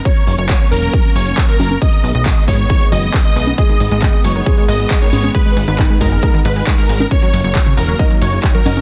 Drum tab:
RD |----------------|----------------|x-x-x-x-x-x-x-x-|x-x-x-x-x-x-x-x-|
HH |xxoxxxoxxxoxxxox|xxoxxxoxxxoxxxox|xxoxxxoxxxoxxxox|xxoxxxoxxxoxxxox|
CP |----x-------x---|----x-------x---|----x-------x---|----x-------x---|
CG |--------------oo|---------------o|--------------oo|---------------o|
BD |o---o---o---o---|o---o-o-o---o---|o---o---o---o---|o---o-o-o---o---|

RD |x-x-x-x-x-x-x-x-|
HH |xxoxxxoxxxoxxxox|
CP |----x-------x---|
CG |--------------oo|
BD |o---o---o---o---|